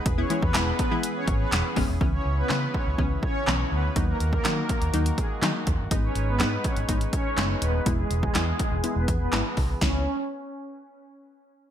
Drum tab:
HH |x-x-x-x-x-x-x-o-|----------------|x-x-x-xxxxx-x-x-|x-x-x-xxxxx-x-x-|
CP |----x-------x---|----x-------x---|----x-------x---|----x-------x---|
SD |----o-------o---|----o-------o---|----o-------o---|----o-------o---|
BD |o--o--o---o---o-|o-----o-o-o-----|o--o--o---o---o-|o-----o-o-o-----|

HH |x-x-x-x-x-x-x-o-|----------------|
CP |----x-------x---|----------------|
SD |----o-------o---|o---------------|
BD |o--o--o---o---o-|o---------------|